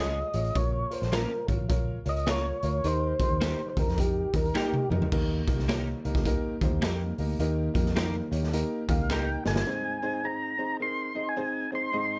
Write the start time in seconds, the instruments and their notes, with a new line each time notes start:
Already playing: fingered electric bass C#2, clean electric guitar G#3, upright piano F4 G#4
0.00 clean electric guitar C#4 F4 G#4, upright piano C#5, tonewheel organ D#5
0.34 fingered electric bass A1, upright piano F4 G#4 C#5, closed hi-hat
0.44 closed hi-hat
0.55 fingered electric bass A#1, upright piano A#2 F4 A#4 C#5, tonewheel organ C#5, kick, closed hi-hat
0.90 upright piano F4 A#4 C#5, tonewheel organ C5, closed hi-hat
1.02 fingered electric bass A#1, snare
1.12 clean electric guitar A#3 C#4 F4 A#4, upright piano F4 A#4 C5, tonewheel organ A#4, finger snap, snare, closed hi-hat
1.48 fingered electric bass G#1, upright piano F4 A#4 C#5, kick, closed hi-hat
1.59 fingered electric bass A#1
1.69 upright piano F4 A#4 C#5, kick, closed hi-hat
2.05 fingered electric bass C#2, upright piano F4 A#4 C#5, tonewheel organ D#5, closed hi-hat
2.16 closed hi-hat
2.26 clean electric guitar A#3 C#4 F4 A#4, upright piano F4 A#4 C#5, finger snap, snare, closed hi-hat
2.31 tonewheel organ C#5
2.63 fingered electric bass D2, upright piano F4 A#4 C#5, closed hi-hat
2.84 fingered electric bass D#2, upright piano D#3 D#4 G4 A#4, tonewheel organ C5, closed hi-hat
3.20 upright piano D#4 G4 A#4, kick, closed hi-hat
3.30 fingered electric bass D#2
3.41 clean electric guitar A#3 D#4 G4 A#4, upright piano D#4 G4 A#4, finger snap, snare, closed hi-hat
3.70 tonewheel organ C5
3.77 fingered electric bass D#2, upright piano D#4 G4 C5, tonewheel organ A#4, kick, closed hi-hat
3.87 fingered electric bass F2, snare
3.97 upright piano D#4 G4 A#4, tonewheel organ G4, kick, closed hi-hat
4.33 fingered electric bass D#2, upright piano D#4 G4 A#4, tonewheel organ A#4, kick, closed hi-hat
4.45 closed hi-hat
4.54 clean electric guitar A#3 D#4 G4 A#4, upright piano D#4 G4 A#4, tonewheel organ G4, finger snap, snare
4.72 muted fingered electric bass stroke, high tom
4.90 fingered electric bass F2, upright piano D#4 G4 A#4, mid tom
5.02 floor tom
5.11 fingered electric bass D#2, upright piano D#3 A#3 D#4 G4 A#4, kick, crash
5.47 fingered electric bass C2, upright piano A#3 D#4 G4 A#4, kick, closed hi-hat
5.59 snare
5.68 upright piano A#3 D#4 G4 C#5, clean electric guitar A#3 D#4 G4 A#4, finger snap, snare, closed hi-hat
6.05 fingered electric bass C#2, upright piano A#3 D#4 G4 A#4, closed hi-hat
6.15 kick, snare
6.25 upright piano A#3 D#4 G4 A#4, kick, closed hi-hat
6.61 fingered electric bass D#2, upright piano A#3 D#4 G4 C5, kick, closed hi-hat
6.73 fingered electric bass D#2
6.82 fingered electric bass F2, clean electric guitar A#3 D#4 G4 A#4, upright piano A#3 D#4 G4 A#4, finger snap, snare, closed hi-hat
7.18 fingered electric bass D2, upright piano A#3 D#4 G4 A#4, open hi-hat
7.39 fingered electric bass D#2, upright piano D#3 A#3 D#4 G4 A#4, closed hi-hat
7.74 fingered electric bass F2, upright piano A#3 D#4 G4 A#4, kick, closed hi-hat
7.86 snare
7.95 upright piano A#3 D#4 G4 A#4, clean electric guitar A#3 D#4 G4 A#4, finger snap, snare, closed hi-hat
8.31 fingered electric bass D#2, upright piano A#3 D#4 G4 C#5, closed hi-hat
8.43 snare
8.52 upright piano A#3 D#4 G4 A#4, closed hi-hat
8.88 fingered electric bass D#2, upright piano A#3 D#4 G4 A#4 G5, tonewheel organ F5, kick, closed hi-hat
8.99 fingered electric bass C#2
9.10 upright piano A#3 D#4 G4 A#4 A#5, clean electric guitar A#3 D#4 G4 A#4, tonewheel organ G5, finger snap, snare
9.45 fingered electric bass G1, upright piano A#3 D#4 G4 A#4, tonewheel organ G#5, snare
9.56 snare
9.66 upright piano G#2 C4 D#4 G#4 C5
10.02 upright piano C4 D#4 G#4 C5
10.23 upright piano C4 D#4 G#4 C5, tonewheel organ A#5
10.58 upright piano C4 D#4 G#4 C5
10.80 upright piano C4 D#4 G#4 A#4, tonewheel organ C6
11.15 upright piano C4 D#4 G#4 D#5
11.29 tonewheel organ G#5
11.36 upright piano C4 D#4 G#4 C5
11.72 upright piano C4 D#4 G#4 C5, tonewheel organ C6
11.92 upright piano G#2 C4 D#4 G#4 D#5